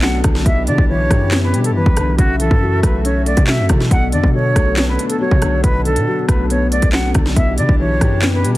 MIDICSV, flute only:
0, 0, Header, 1, 2, 480
1, 0, Start_track
1, 0, Key_signature, 2, "minor"
1, 0, Tempo, 431655
1, 510, Time_signature, 4, 2, 24, 8
1, 9537, End_track
2, 0, Start_track
2, 0, Title_t, "Flute"
2, 0, Program_c, 0, 73
2, 29, Note_on_c, 0, 78, 81
2, 223, Note_off_c, 0, 78, 0
2, 508, Note_on_c, 0, 76, 98
2, 702, Note_off_c, 0, 76, 0
2, 750, Note_on_c, 0, 74, 76
2, 943, Note_off_c, 0, 74, 0
2, 992, Note_on_c, 0, 73, 97
2, 1555, Note_off_c, 0, 73, 0
2, 1591, Note_on_c, 0, 71, 88
2, 1784, Note_off_c, 0, 71, 0
2, 1830, Note_on_c, 0, 69, 77
2, 1927, Note_off_c, 0, 69, 0
2, 1948, Note_on_c, 0, 71, 89
2, 2400, Note_off_c, 0, 71, 0
2, 2427, Note_on_c, 0, 66, 90
2, 2622, Note_off_c, 0, 66, 0
2, 2671, Note_on_c, 0, 69, 88
2, 3122, Note_off_c, 0, 69, 0
2, 3150, Note_on_c, 0, 71, 79
2, 3344, Note_off_c, 0, 71, 0
2, 3389, Note_on_c, 0, 73, 75
2, 3583, Note_off_c, 0, 73, 0
2, 3629, Note_on_c, 0, 74, 87
2, 3823, Note_off_c, 0, 74, 0
2, 3872, Note_on_c, 0, 76, 81
2, 4064, Note_off_c, 0, 76, 0
2, 4350, Note_on_c, 0, 78, 100
2, 4543, Note_off_c, 0, 78, 0
2, 4589, Note_on_c, 0, 74, 75
2, 4783, Note_off_c, 0, 74, 0
2, 4829, Note_on_c, 0, 73, 99
2, 5394, Note_off_c, 0, 73, 0
2, 5428, Note_on_c, 0, 71, 83
2, 5622, Note_off_c, 0, 71, 0
2, 5669, Note_on_c, 0, 69, 81
2, 5766, Note_off_c, 0, 69, 0
2, 5789, Note_on_c, 0, 73, 86
2, 6241, Note_off_c, 0, 73, 0
2, 6268, Note_on_c, 0, 71, 96
2, 6462, Note_off_c, 0, 71, 0
2, 6511, Note_on_c, 0, 69, 88
2, 6961, Note_off_c, 0, 69, 0
2, 6991, Note_on_c, 0, 71, 78
2, 7184, Note_off_c, 0, 71, 0
2, 7231, Note_on_c, 0, 73, 75
2, 7424, Note_off_c, 0, 73, 0
2, 7469, Note_on_c, 0, 74, 88
2, 7663, Note_off_c, 0, 74, 0
2, 7708, Note_on_c, 0, 78, 79
2, 7903, Note_off_c, 0, 78, 0
2, 8188, Note_on_c, 0, 76, 93
2, 8382, Note_off_c, 0, 76, 0
2, 8428, Note_on_c, 0, 74, 75
2, 8622, Note_off_c, 0, 74, 0
2, 8671, Note_on_c, 0, 73, 90
2, 9234, Note_off_c, 0, 73, 0
2, 9271, Note_on_c, 0, 71, 87
2, 9464, Note_off_c, 0, 71, 0
2, 9537, End_track
0, 0, End_of_file